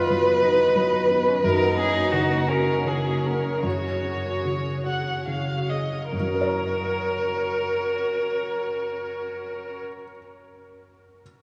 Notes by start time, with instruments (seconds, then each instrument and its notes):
Already playing: felt piano F#2 D#4, string section B3 B4 D#5, cello F4, violin B4
0.10 felt piano F#3
0.43 cello D#4, felt piano F#4, vibraphone B4
0.60 vibraphone B5
0.75 felt piano F#3, vibraphone D#5
0.94 vibraphone B4
1.08 cello B3, felt piano F#4, vibraphone B5
1.27 cello C#4, vibraphone D#5
1.42 felt piano F#2, string section A#3 G#4 C#5, cello D#4, vibraphone F#4, violin A#4
1.61 vibraphone F#5
1.78 felt piano C#4, violin G#4, vibraphone C#5
1.95 vibraphone F#4
2.12 felt piano C#3, violin F#4
2.48 cello C#4, vibraphone F#4, felt piano G#4, violin A#4
2.68 vibraphone F#5
2.84 felt piano C#3, violin G#4, vibraphone A#4
3.04 vibraphone F#4
3.23 felt piano G#4, violin A#4, vibraphone F#5
3.44 vibraphone A#4
3.63 felt piano F#2, string section C#4, cello F#4, vibraphone F#4
3.67 violin C#5
3.84 vibraphone G#5
4.04 felt piano C#4, vibraphone F#5
4.23 vibraphone F#4
4.45 felt piano C#3
4.85 vibraphone F#4, felt piano G#4, violin F#5
5.05 vibraphone G#5
5.26 felt piano C#3, vibraphone C#5, violin F5
5.48 vibraphone F#4
5.70 felt piano G#4, violin D#5, vibraphone G#5
5.93 vibraphone C#5
6.12 felt piano F#2, string section C#4 A#4 C#5, cello F#4, violin A#4
6.20 felt piano F#3
6.27 felt piano C#4
6.34 felt piano A#4
6.41 felt piano C#5
6.48 felt piano A#5